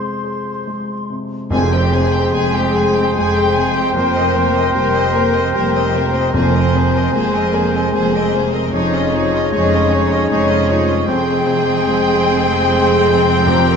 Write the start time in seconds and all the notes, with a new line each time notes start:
Already playing: F2 C3 G#3 G#4 C5 C6
0.24 G#4
0.67 G#3
1.10 C3
1.50 F1 F2 G#3 G#4 C5 G5 G#5
1.72 C4 G4 G5
1.93 C3 G#3 G#4 G#5
2.13 C4 G4 G5
2.33 F1 F2 G#3 G#4 G#5
2.55 C4 G4 G5
2.75 G#3 G#4 G5 G#5
2.94 C4 G4 G5
3.15 F1 F2 G#3 G#4 G#5
3.34 C4 G4 G5
3.54 C3 G#3 G#4 G#5
3.75 C4 G4 G5
3.94 F1 F2 A#3 C4 A#4 C5
4.13 C4 C5 D#5
4.34 C3 A#3 A#4 C5
4.54 C4 C5 D#5
4.73 F1 F2 G3 A#3 A#4 C5
4.94 C4 C5 D#5
5.13 A#3 A#4 C5
5.34 C4 C5 D#5
5.53 F1 F2 G3 A#3 A#4 C5
5.73 C4 C5 D#5
5.94 C3 A#3 A#4 C5
6.14 C4 C5 D#5
6.33 F1 F2 A#3 G#4 C5 G#5
6.54 C4 A#4 D#5
6.73 C3 A#3 G#4 C5
6.93 C4 A#4 D#5
7.13 F1 F2 G#3 A#3 G#4 C5
7.33 C4 A#4 D#5
7.53 A#3 G#4 A#4 C5
7.72 C4 A#4 D#5
7.93 F1 F2 G#3 A#3 G#4 C5
8.14 C4 A#4 D#5
8.33 C3 A#3 G#4 C5
8.54 C4 A#4 D#5
8.73 F1 F2 C#4 D#4 G#4 C#5 D#5
8.94 C#4 F4 D#5
9.12 F3 D#4 G#4 C#5
9.34 C#4 F4 D#5
9.52 F1 F2 G#3 D#4 G#4 C#5
9.71 C#4 F4 D#5
9.90 D#4 G#4 C#5
10.10 C#4 F4 D#5
10.29 F1 F2 G#3 D#4 G#4 C#5
10.49 C#4 F4 D#5
10.69 F3 D#4 G#4 C#5
10.86 C#4 F4 D#5
11.07 F1 F2 G#3 C4 G#4 C5 G5
11.47 C3
11.87 G#3
12.28 C5
12.69 G#3
13.08 C3
13.46 F2 C4 G4 A#4 A#5